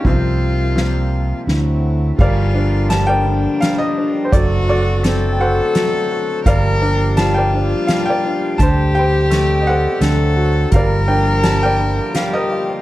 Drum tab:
CC |------|x-----|------|------|
HH |------|--x-x-|x-x-x-|x-x-x-|
SD |--o-o-|--o-o-|--o-o-|--o-o-|
BD |o-----|o-----|o-----|o-----|

CC |------|------|
HH |x-x-x-|x-x-x-|
SD |--o-o-|--o-o-|
BD |o-----|o-----|